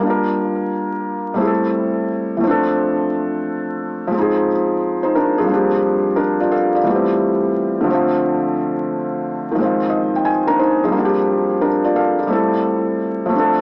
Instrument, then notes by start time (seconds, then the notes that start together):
felt piano
Already playing: G3
0.00 A#3 D4
0.06 F4 A#4
1.34 G3 A3 C4
1.39 E4 G#4
1.47 A4
2.37 E3 A3
2.43 F3 C4 D4
2.51 A4
4.07 F3 G#3
4.15 C4 D#4
4.21 G#4
5.03 D#4 C5
5.15 D4 A#4
5.38 F3 C4 G#4
5.43 G3 A#3
5.50 D4 G4
6.16 D4 A#4
6.40 F4 D5
6.52 A4 F5
6.75 F4 D5
6.83 E3 G3 A3
6.88 B3 G4
6.95 C4
7.81 D3 F3
7.87 A3 C4
7.94 F4
9.51 D#3 F3
9.58 G#3 C4
9.65 F4
9.90 D#5
10.16 G5
10.25 G#5
10.47 D4 A#4 A#5
10.59 D#4 C5
10.84 F3 C4 G#4
10.88 G3 A#3
10.95 D4 F#4
11.05 G4
11.61 D4 A#4
11.85 F4 D5
11.96 A4 F5
12.19 F4 D5
12.27 G3 A3 C4
12.32 E4 A4
13.26 F3 A3
13.32 C4 D4
13.39 A4